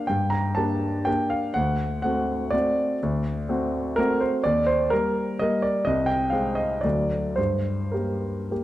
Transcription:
grand piano
0.07 G2 G5
0.30 A#5
0.55 A#3 D4 G4 A5
1.05 A#3 D4 G4 G5
1.30 F5
1.54 D2 F#5
2.02 A3 C4 F#4 F#5
2.51 A3 C4 F#4 D5
3.03 D2
3.49 A3 C4 F#4
3.96 A3 C4 F#4 A#4
4.20 C5
4.44 D#2 D5
4.66 C5
4.90 G3 A#3 A#4
5.39 G3 A#3 A#4 D#5
5.62 D5
5.85 C2 D#5
6.06 G5
6.30 G#3 C4 G#4 F5
6.55 D#5
6.81 D2 F#3 A3 A4 D5
7.36 G2 C5
7.92 G3 A#3 G4 A#4
8.51 G3 A#3 G4

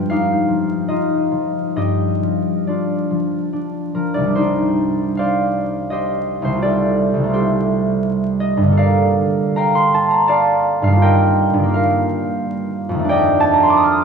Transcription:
harp
Already playing: G2 F3 F4 B4 G5
0.10 D#4 G4 F5
0.48 F3
0.88 D#4 F4 D#5
1.31 F3
1.76 G2 G4 D#5
2.22 F3
2.67 D4 F4 D5
3.11 F3
3.53 D4
3.94 F3 A#4
4.14 C2 D5
4.19 D#3
4.25 G3
4.30 D4
4.35 D#4 G4 C5
5.17 C5 D5 F5
5.90 G4 C5 D#5
6.42 C2 C5
6.47 D#3
6.52 A3
6.57 F4
6.62 G4 A4 D5
7.14 C2
7.19 D#3
7.24 A3
7.29 F4
7.33 G4 A4 C5
8.40 D#5
8.57 G2
8.61 D3
8.67 A#3
8.72 A4
8.77 A#4 D5 F5
9.56 F5 G5 A#5
9.75 C6
9.94 A5
10.11 A#5
10.28 D5 F5 A5
10.82 G2 F5
10.87 D#3
10.92 A#3
10.97 F4
11.02 A#4 D#5 G5
11.54 G2
11.58 D#3
11.63 A#3
11.68 F4
11.74 A#4 F5
12.89 F2
12.94 D#3
12.99 A3
13.04 D4
13.09 D5 D#5 G5
13.40 A5
13.54 A#5
13.63 C6
13.70 D6
13.77 D#6
13.84 F6
13.92 D#6

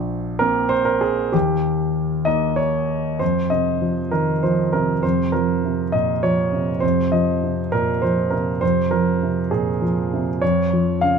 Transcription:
grand piano
Already playing: A#1
0.39 A#3 C4 A#4
0.69 C5
0.85 A#4
1.01 G#4
1.32 D#2 G4
2.25 A#3 D#4 D#5
2.56 C#5
3.19 F2 C5
3.50 C3 D#5
3.82 F3
4.11 D#3 A#4
4.43 F3 C5
4.73 C3 A#4
5.03 F2 C5
5.32 F3 A#4
5.65 C3
5.92 A#2 D#5
6.23 F3 C#5
6.53 C3
6.80 F2 C5
7.12 F3 D#5
7.44 C3
7.72 A#2 A#4
8.02 F3 C5
8.30 C3 A#4
8.61 F2 C5
8.91 F3 A#4
9.23 C3
9.51 A#2 G#4
9.82 F3
10.13 C3
10.41 F2 C#5
10.73 F3
11.01 C#3 F5

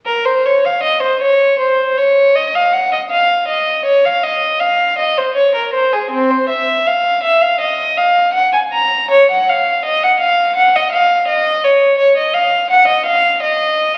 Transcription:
violin
0.06 A#4
0.25 C5
0.46 C#5
0.65 F5
0.83 D#5
1.03 C5
1.22 C#5
1.59 C5
1.98 C#5
2.36 D#5
2.55 F5
2.73 F#5
2.93 D#5
3.11 F5
3.48 D#5
3.86 C#5
4.05 F5
4.23 D#5
4.60 F5
4.99 D#5
5.18 C5
5.35 C#5
5.55 A#4
5.74 C5
5.93 G#4
6.11 C4
6.30 C5
6.49 E5
6.87 F5
7.23 E5
7.41 F5
7.61 D#5
7.97 F5
8.33 F#5
8.53 G#5
8.73 A#5
9.11 C#5
9.31 F#5
9.49 F5
9.85 D#5
10.03 F#5
10.20 F5
10.56 F#5
10.75 D#5
10.92 F5
11.28 D#5
11.64 C#5
11.98 C#5
12.18 D#5
12.34 F5
12.71 F#5
12.88 D#5
13.06 F5
13.43 D#5

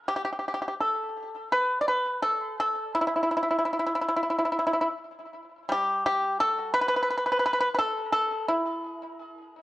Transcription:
pipa
0.08 G4
0.16 G4
0.25 G4
0.33 G4
0.39 G4
0.48 G4
0.54 G4
0.62 G4
0.68 G4
0.80 A4
1.52 B4
1.81 D5
1.88 B4
2.23 A4
2.60 A4
2.95 E4
3.01 E4
3.07 E4
3.16 E4
3.23 E4
3.31 E4
3.37 E4
3.43 E4
3.50 E4
3.58 E4
3.65 E4
3.73 E4
3.79 E4
3.86 E4
3.95 E4
4.01 E4
4.08 E4
4.16 E4
4.23 E4
4.30 E4
4.38 E4
4.45 E4
4.52 E4
4.59 E4
4.67 E4
4.73 E4
4.81 E4
5.69 G3 G4
6.06 G4
6.40 A4
6.74 B4
6.81 B4
6.88 B4
6.96 B4
7.03 B4
7.11 B4
7.18 B4
7.26 B4
7.32 B4
7.40 B4
7.46 B4
7.53 B4
7.61 B4
7.75 B4
7.79 A4
8.13 A4
8.48 E4

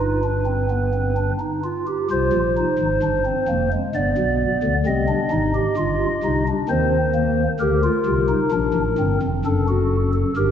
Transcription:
pipe organ
Already playing: G1 G2 B4
0.00 D#4
0.23 D4
0.46 C4
0.70 B3
0.94 C4
1.17 D4
1.40 D#4
1.64 F4
1.87 G4
2.11 C2 C3 F4 C5
2.33 A#1 A#2
2.57 D#4
2.79 G#1 G#2
3.03 G1 G2 D4
3.25 C4
3.48 F1 F2 A#3
3.73 G#3
3.95 G1 G2 B3 D5
4.18 B1 B2
4.63 D2 D3
4.86 C2 C3 C4 D#5
5.08 D4
5.31 G#1 G#2 D#4
5.55 G4
5.77 G1 G2 F4
6.24 C2 C3 D#4
6.47 D4
6.69 D#2 D#3 C4 C5
7.15 A#3
7.60 D2 D3 G4 A#4
7.84 F4
8.06 C2 C3
8.29 D#4
8.52 A#1 A#2 D4
8.74 A1 A2
8.98 G1 G2 C4
9.22 F1 F2
9.45 F#1 F#2 D4 A4
9.68 F#4
10.13 A4
10.37 G1 G2 G4 A#4

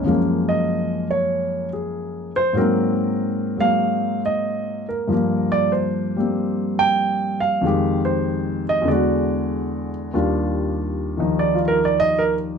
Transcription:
grand piano
Already playing: C#4
0.03 F#2 F3 G#3
0.09 A#3
0.49 D#5
1.11 C#5
1.73 G#4
2.36 C5
2.53 G#2 F#3 A#3
2.57 C4 A#4
3.57 F#3 G#3 A#3 F5
4.26 D#5
4.89 A#4
5.08 G2 F3
5.13 A#3
5.52 D5
5.72 C5
6.17 G3 A#3 C4
6.79 G5
7.40 F5
7.61 F2 D#3 G#3
7.67 G4
8.05 C5
8.69 D#5
8.82 E2 D3
8.88 G#3 D5
8.92 F#4
10.13 D#2 G3 D4 F4
11.17 D#3 F3 D#4
11.39 D5
11.55 F4
11.68 A#4
11.85 D5
12.00 D#5
12.19 A#4

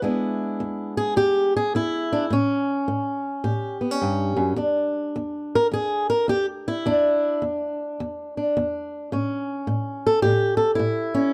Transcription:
steel-string acoustic guitar
0.02 E2 G#3 B3 D4 E4
0.60 E2
0.97 G#4
1.16 E2 G4
1.57 G#4
1.75 E2 E4
2.13 D4
2.30 A2 C#4
2.88 A2
3.44 A2 G4
3.81 B3
3.91 C#4
4.02 G2
4.37 F#2
4.56 E2 D4
5.16 E2
5.55 A#4
5.72 E2 G#4
6.10 A#4
6.28 E2 G4
6.68 E4
6.86 E2 D4
7.42 E2
8.00 E2
8.37 D4
8.57 E2
9.12 A2 C#4
9.67 A2
10.07 A4
10.22 A2 G4
10.57 A4
10.75 A2 E4
11.14 C#4

